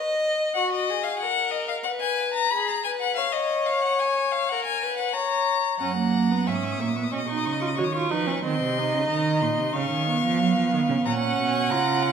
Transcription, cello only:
5.81 6.49 F#2 medium
6.47 6.79 G#2 medium
6.80 7.12 A#2 medium
7.13 7.47 B2 medium
7.46 7.81 C#3 medium
7.79 8.11 D#3 medium
8.12 8.43 F3 medium
8.44 8.61 D#3 medium
8.61 8.95 C3 medium
8.94 9.09 C#3 medium
9.10 9.44 D#3 medium
9.42 9.60 A#2 medium
9.59 9.74 C3 medium
9.75 9.90 C#3 medium
9.91 10.23 D#3 medium
10.23 10.41 F3 medium
10.39 10.55 F#3 medium
10.56 10.72 F3 medium
10.73 10.79 D#3 medium
10.89 10.96 C#3 medium
11.06 11.37 A#2 medium
11.39 11.72 B2 medium
11.70 12.12 C#3 medium

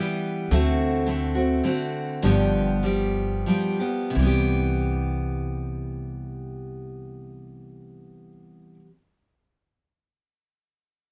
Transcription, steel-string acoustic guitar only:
0.00 0.51 E3 medium
0.00 0.51 G3 medium
0.00 0.52 B3 medium
0.00 0.52 G4 medium
0.51 1.05 D3 medium
0.51 1.07 A3 medium
0.51 1.08 C4 medium
0.51 1.08 F#4 medium
1.06 1.35 D3 medium
1.06 1.36 A3 medium
1.06 1.35 C4 medium
1.06 1.34 F#4 medium
1.35 1.63 A3 soft
1.35 1.64 C4 soft
1.35 1.64 F#4 soft
1.64 2.22 D3 medium
1.64 2.23 A3 medium
1.64 2.24 C4 medium
1.64 2.24 F#4 medium
2.22 2.84 G2 medium
2.22 2.84 D3 medium
2.22 2.82 F3 medium
2.22 2.83 G3 medium
2.22 2.83 B3 medium
2.22 2.85 G4 medium
2.83 3.45 F3 medium
2.83 3.47 G3 medium
2.83 3.47 B3 medium
2.83 3.48 G4 medium
3.46 3.80 F3 medium
3.46 3.80 G3 medium
3.46 3.79 B3 medium
3.46 3.78 G4 medium
3.80 4.15 F3 soft
3.80 4.15 G3 soft
3.80 4.15 B3 soft
3.80 4.15 G4 soft
4.10 8.74 C3 medium
4.15 8.79 E3 medium
4.15 8.83 G3 medium
4.23 8.87 B3 medium
4.23 8.90 G4 medium

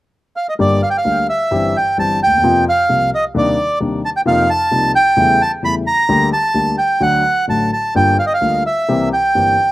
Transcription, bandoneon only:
0.36 0.47 F5 medium
0.49 0.54 D#5 medium
0.61 0.81 D5 medium
0.83 0.89 F5 medium
0.90 0.97 G5 medium
0.98 1.27 F5 medium
1.29 1.77 E5 medium
1.77 1.98 G5 medium
1.99 2.20 A5 medium
2.23 2.65 G5 medium
2.69 3.10 F5 medium
3.15 3.25 D#5 medium
3.38 3.79 D5 medium
4.05 4.10 A5 medium
4.17 4.21 G5 medium
4.27 4.50 F5 medium
4.50 4.92 A5 medium
4.95 5.42 G5 medium
5.42 5.52 A5 medium
5.65 5.75 B5 medium
5.87 6.29 A#5 medium
6.33 6.76 A5 medium
6.78 7.02 G5 medium
7.02 7.45 F#5 medium
7.50 7.71 A5 medium
7.73 7.94 A5 medium
7.96 8.17 G5 medium
8.19 8.25 F5 medium
8.26 8.33 D#5 medium
8.34 8.63 F5 medium
8.66 9.09 E5 medium
9.13 9.72 G5 medium

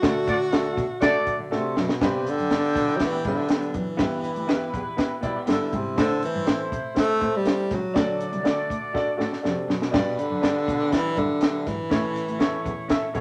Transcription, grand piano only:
0.02 0.73 D3 medium
0.02 0.32 A3 medium
0.02 0.32 D4 medium
0.02 0.32 F#4 medium
0.02 0.33 A4 loud
0.51 0.81 A3 medium
0.51 0.82 D4 medium
0.51 0.82 F#4 medium
0.51 0.82 A4 loud
1.01 1.31 A3 medium
1.01 1.31 D4 medium
1.01 1.32 F#4 medium
1.01 1.32 A4 loud
1.51 1.81 A3 medium
1.51 1.81 D4 medium
1.51 1.81 F#4 medium
1.51 1.81 A4 loud
2.00 2.72 G2 medium
2.00 2.30 B3 medium
2.00 2.31 D4 medium
2.00 2.31 G4 medium
2.00 2.31 B4 loud
2.50 2.79 B3 medium
2.50 2.80 D4 medium
2.50 2.80 G4 medium
2.50 2.81 D5 medium
3.00 3.15 B3 medium
3.00 3.15 D4 medium
3.00 3.15 G4 medium
3.00 3.16 B4 medium
3.24 3.39 B3 medium
3.24 3.40 D4 medium
3.24 3.40 G4 medium
3.24 3.40 B4 medium
3.48 3.78 B3 medium
3.48 3.79 D4 medium
3.48 3.79 G4 medium
3.48 3.79 B4 medium
3.97 4.69 G2 medium
3.97 4.28 B3 loud
3.97 4.28 E4 medium
3.97 4.28 G4 medium
3.97 4.28 B4 loud
4.47 4.77 B3 medium
4.47 4.78 E4 medium
4.47 4.78 G4 medium
4.47 4.78 B4 loud
4.97 5.12 B3 medium
4.97 5.12 E4 medium
4.97 5.13 G4 medium
4.97 5.13 B4 medium
5.21 5.37 B3 medium
5.21 5.37 E4 medium
5.21 5.37 G4 medium
5.21 5.38 D5 medium
5.46 5.77 B3 medium
5.46 5.77 E4 medium
5.46 5.77 G4 medium
5.46 5.77 A4 medium
5.96 6.68 A2 medium
5.96 6.26 C4 medium
5.96 6.27 E4 medium
5.96 6.27 A4 medium
5.96 6.27 C5 loud
6.45 6.76 C4 medium
6.45 6.76 E4 medium
6.45 6.76 A4 medium
6.45 6.76 C5 medium
6.95 7.10 C4 medium
6.95 7.11 E4 medium
6.95 7.11 A4 medium
6.95 7.11 C5 medium
7.19 7.35 C4 medium
7.19 7.35 E4 medium
7.19 7.36 A4 medium
7.19 7.36 C5 medium
7.44 7.75 C4 medium
7.44 7.75 E4 medium
7.44 7.75 A4 medium
7.44 7.75 C5 medium
7.94 8.66 D3 medium
7.94 8.24 D4 loud
7.94 8.25 F#4 medium
7.94 8.25 A4 medium
7.94 8.25 D5 loud
8.43 8.74 D4 medium
8.43 8.74 F#4 medium
8.43 8.74 A4 medium
8.43 8.75 D5 medium
8.93 9.09 D4 medium
8.93 9.09 F#4 medium
8.93 9.09 A4 medium
8.93 9.10 D5 loud
9.17 9.33 D4 medium
9.17 9.33 F#4 medium
9.17 9.34 A4 medium
9.17 9.34 D5 medium
9.42 9.72 D4 medium
9.42 9.73 F#4 medium
9.42 9.73 A4 medium
9.42 9.74 D5 medium
9.91 10.63 G2 medium
9.91 10.22 D4 loud
9.91 10.22 G4 medium
9.91 10.23 B4 medium
9.91 10.23 D5 loud
10.41 10.72 D4 medium
10.41 10.72 G4 medium
10.41 10.72 B4 medium
10.41 10.72 D5 medium
10.90 11.06 D4 medium
10.90 11.07 G4 medium
10.90 11.07 B4 medium
10.90 11.07 D5 medium
11.15 11.31 D4 medium
11.15 11.31 G4 medium
11.15 11.32 B4 medium
11.15 11.32 E5 medium
11.40 11.71 D4 medium
11.40 11.71 G4 medium
11.40 11.71 B4 medium
11.40 11.72 E5 medium
11.90 12.61 A2 medium
11.90 12.20 C#4 medium
11.90 12.21 E4 medium
11.90 12.21 A4 medium
11.90 12.21 C#5 loud
12.39 12.69 C#4 medium
12.39 12.70 E4 medium
12.39 12.70 A4 medium
12.39 12.70 C#5 loud
12.88 13.04 C#4 medium
12.88 13.05 E4 medium
12.88 13.05 A4 medium
12.88 13.05 E5 loud
13.14 13.21 C#4 medium
13.14 13.21 E4 medium
13.14 13.21 A4 medium
13.14 13.21 C#5 medium

